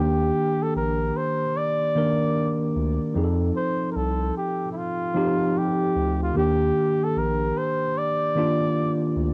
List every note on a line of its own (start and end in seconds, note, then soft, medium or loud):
0.00 0.31 D#2 medium
0.00 1.44 D#3 medium
0.00 1.45 A#3 medium
0.00 1.45 D4 medium
0.00 0.64 G4 loud
0.00 1.46 G4 medium
0.63 0.76 A4 loud
0.76 1.11 A#1 loud
0.76 1.18 A#4 medium
1.17 1.59 C5 medium
1.57 2.76 D5 loud
1.95 3.07 D#3 medium
1.95 3.07 A#3 medium
1.95 3.08 D4 medium
1.95 3.08 A#4 medium
2.76 2.99 D2 loud
3.14 3.51 F2 loud
3.14 4.64 F3 medium
3.14 4.64 C4 medium
3.14 4.65 D#4 medium
3.14 3.25 G#4 medium
3.24 4.68 A4 medium
3.57 3.89 C5 medium
3.92 3.98 A#4 medium
3.96 4.31 C2 loud
3.96 4.36 A4 medium
4.37 4.69 G4 medium
4.72 4.79 E4 medium
4.77 5.59 F4 medium
5.14 6.26 F3 medium
5.14 6.27 C4 medium
5.14 6.27 D#4 medium
5.14 6.28 G4 medium
5.58 6.22 G4 medium
5.96 6.31 D2 loud
6.23 6.35 F4 medium
6.34 6.71 D#2 medium
6.34 7.83 D#3 medium
6.34 7.84 A#3 medium
6.34 7.84 D4 medium
6.34 7.85 G4 medium
6.38 7.05 G4 loud
7.03 7.19 A4 medium
7.16 7.52 A#1 loud
7.16 7.59 A#4 medium
7.58 7.99 C5 medium
7.98 9.17 D5 loud
8.35 9.34 D#3 medium
8.35 9.34 A#3 medium
8.35 9.34 D4 medium
8.35 9.34 F4 medium
9.16 9.34 D2 loud